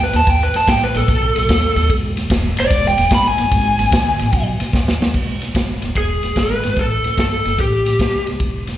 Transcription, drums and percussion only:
0.13 snare, ride
0.27 kick, snare, ride
0.54 snare, ride
0.67 kick, snare, ride
0.94 snare, ride
1.08 kick, snare, ride
1.36 snare, ride
1.49 kick, snare, ride
1.76 snare, ride
1.90 kick, ride
2.17 snare, ride
2.30 kick, snare, ride
2.57 snare, ride
2.70 kick, snare, ride
2.98 snare, ride
3.11 kick, snare, ride
3.38 snare, ride
3.51 kick, ride
3.79 snare, ride
3.92 kick, snare, ride
4.19 snare, ride
4.33 kick, ride
4.60 snare, ride
4.73 kick, snare
4.88 snare
5.02 snare
5.14 kick, crash
5.42 snare, ride
5.55 kick, snare, ride
5.82 snare, ride
5.95 kick, ride
6.23 snare, ride
6.36 kick, snare, ride
6.63 snare, ride
6.77 kick, snare, ride
7.04 snare, ride
7.18 kick, snare, ride
7.45 snare, ride
7.58 kick, ride
7.86 snare, ride
7.99 kick, snare, ride
8.27 snare, ride
8.40 kick, ride
8.67 snare, ride

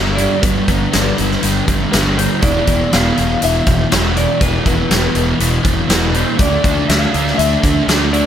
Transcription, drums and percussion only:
0.18 closed hi-hat
0.43 kick, closed hi-hat
0.68 kick, closed hi-hat
0.93 snare, closed hi-hat
1.18 closed hi-hat
1.32 snare
1.43 closed hi-hat
1.68 kick, closed hi-hat
1.93 snare, closed hi-hat
2.18 closed hi-hat
2.42 kick, closed hi-hat
2.67 kick, closed hi-hat
2.93 snare, closed hi-hat
3.17 closed hi-hat
3.42 closed hi-hat
3.66 kick, closed hi-hat
3.92 snare, closed hi-hat
4.17 closed hi-hat
4.41 kick, closed hi-hat
4.66 kick, closed hi-hat
4.91 snare, closed hi-hat
5.15 closed hi-hat
5.40 closed hi-hat
5.65 kick, closed hi-hat
5.90 snare, closed hi-hat
6.14 closed hi-hat
6.39 kick, closed hi-hat
6.64 kick, closed hi-hat
6.89 snare, closed hi-hat
7.14 closed hi-hat
7.27 snare
7.39 closed hi-hat
7.63 kick, closed hi-hat
7.88 snare, closed hi-hat
8.14 closed hi-hat

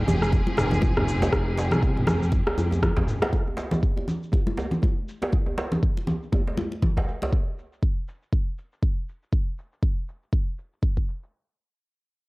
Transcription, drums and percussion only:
0.08 djembe tone, low conga, shaker
0.22 cross-stick, shaker
0.32 kick, muted conga, djembe tone, shaker
0.47 high conga
0.57 cross-stick, mid tom, djembe slap, shaker
0.71 muted conga, djembe tone, low conga, shaker
0.82 kick, high conga, shaker
0.97 cross-stick, mid tom, djembe tone
1.08 shaker
1.22 djembe slap, muted conga, djembe tone, shaker
1.33 kick, cross-stick, high conga, shaker
1.58 muted conga, djembe slap, djembe tone, shaker
1.71 cross-stick, low conga, shaker
1.82 kick, djembe tone, shaker
1.97 mid tom, muted conga
2.07 cross-stick, djembe tone, low conga, shaker
2.23 shaker
2.32 kick, muted conga, high conga, shaker
2.47 cross-stick, djembe slap, djembe tone
2.58 high conga, shaker
2.71 muted conga, djembe tone, shaker
2.83 kick, cross-stick, high conga, low conga, shaker
2.96 kick, djembe slap, djembe tone
3.08 mid tom, shaker
3.22 cross-stick, djembe slap, muted conga, shaker
3.33 kick, high conga, shaker
3.47 djembe tone
3.57 djembe slap, muted conga, shaker
3.71 djembe tone, low conga, shaker
3.83 kick, shaker
3.97 muted conga, djembe tone
4.08 low conga, shaker
4.23 shaker
4.32 kick, muted conga, djembe tone, shaker
4.47 high conga
4.57 djembe slap, djembe tone, shaker
4.71 muted conga, low conga, shaker
4.82 kick, djembe tone, high conga, shaker
5.08 shaker
5.22 muted conga, djembe slap, djembe tone, shaker
5.32 kick, high conga, shaker
5.46 djembe tone
5.58 djembe slap, muted conga, shaker
5.72 djembe tone, low conga, shaker
5.83 kick, shaker
5.97 muted conga
6.07 djembe tone, low conga, shaker
6.23 shaker
6.32 kick, muted conga, djembe tone, high conga
6.47 djembe slap
6.57 djembe tone, high conga, shaker
6.72 muted conga, shaker
6.82 kick, high conga, low conga
6.97 kick, djembe slap, djembe tone
7.08 shaker
7.22 muted conga, djembe slap, djembe tone
7.33 kick
7.58 shaker
7.73 shaker
7.83 kick
8.08 shaker
8.22 shaker
8.33 kick
8.58 shaker
8.73 shaker
8.83 kick
9.09 shaker
9.23 shaker
9.33 kick
9.58 shaker
9.73 shaker
9.83 kick
10.08 shaker
10.23 shaker
10.33 kick
10.58 shaker
10.73 shaker
10.83 kick
10.97 kick
11.08 shaker
11.23 shaker

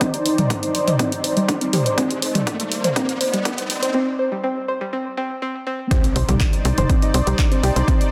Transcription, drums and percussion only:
0.01 kick, closed hi-hat
0.14 closed hi-hat
0.26 open hi-hat
0.38 closed hi-hat, mid tom
0.50 kick, closed hi-hat
0.63 closed hi-hat
0.75 open hi-hat
0.88 closed hi-hat, mid tom
0.99 kick, closed hi-hat
1.12 closed hi-hat
1.24 open hi-hat
1.37 closed hi-hat
1.49 kick, closed hi-hat
1.61 closed hi-hat
1.73 mid tom, open hi-hat
1.86 closed hi-hat
1.98 kick, closed hi-hat
2.11 closed hi-hat
2.22 open hi-hat
2.35 closed hi-hat, mid tom
2.47 kick, closed hi-hat
2.60 closed hi-hat
2.72 open hi-hat
2.84 closed hi-hat, mid tom
2.96 kick, closed hi-hat
3.09 closed hi-hat
3.21 open hi-hat
3.34 closed hi-hat
3.45 kick, closed hi-hat
3.58 closed hi-hat
3.70 open hi-hat
3.83 closed hi-hat
5.91 kick, closed hi-hat
6.04 closed hi-hat
6.16 open hi-hat
6.29 closed hi-hat, mid tom
6.40 kick, clap, closed hi-hat
6.53 closed hi-hat
6.65 open hi-hat
6.78 closed hi-hat, mid tom
6.90 kick, closed hi-hat
7.02 closed hi-hat
7.14 open hi-hat
7.27 closed hi-hat
7.39 kick, clap, closed hi-hat
7.52 closed hi-hat
7.63 open hi-hat
7.76 closed hi-hat
7.88 kick, closed hi-hat
8.01 closed hi-hat

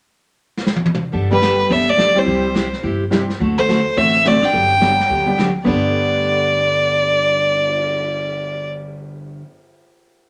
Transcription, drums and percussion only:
0.57 snare
0.67 snare
0.76 high tom
0.86 high tom
0.95 mid tom
1.14 brush sweep, kick
1.42 snare, hi-hat pedal
1.70 brush sweep, kick
1.99 snare, hi-hat pedal
2.27 brush sweep, kick
2.55 snare, hi-hat pedal
2.73 snare
2.83 brush sweep, kick
3.12 snare, hi-hat pedal
3.30 snare
3.40 brush sweep, kick
3.69 snare, hi-hat pedal
3.97 brush sweep, kick
4.25 snare, hi-hat pedal
4.42 snare
4.53 brush sweep, kick
4.82 snare, hi-hat pedal
5.00 snare
5.10 brush sweep, kick
5.39 snare, hi-hat pedal
5.66 kick, crash
5.84 cymbal swell

